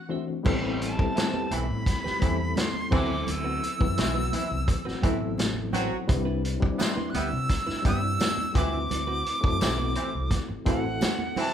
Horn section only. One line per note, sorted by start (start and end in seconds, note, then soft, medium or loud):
1.15 1.31 E3 medium
1.15 1.31 C4 medium
1.15 1.31 E4 medium
1.51 1.66 E3 medium
1.51 1.66 C4 medium
1.51 1.66 E4 medium
2.21 2.36 E3 medium
2.21 2.36 C4 medium
2.21 2.36 E4 medium
2.91 3.14 E3 medium
2.91 3.14 C4 medium
2.91 3.14 E4 loud
3.98 4.13 E3 medium
3.98 4.13 C4 medium
3.98 4.13 E4 medium
4.33 4.48 E3 medium
4.33 4.48 C4 medium
4.33 4.48 E4 medium
5.03 5.18 E3 medium
5.03 5.18 C4 medium
5.03 5.18 E4 medium
5.73 5.96 F#3 medium
5.73 5.96 C4 medium
5.73 5.96 F#4 loud
6.78 6.94 G3 medium
6.78 6.94 B3 medium
6.78 6.94 E4 medium
7.14 7.29 G3 medium
7.14 7.29 B3 medium
7.14 7.29 E4 medium
7.85 8.00 G3 medium
7.85 8.00 B3 medium
7.85 8.00 E4 medium
8.55 8.78 E3 medium
8.55 8.78 C4 medium
8.55 8.77 E4 medium
9.61 9.76 E3 medium
9.61 9.76 C4 medium
9.61 9.76 E4 medium
9.96 10.11 E3 medium
9.96 10.11 C4 medium
9.96 10.11 E4 medium
10.66 10.81 E3 medium
10.66 10.81 C4 medium
10.66 10.81 E4 medium
11.37 11.54 E3 medium
11.37 11.54 C4 medium
11.37 11.54 E4 medium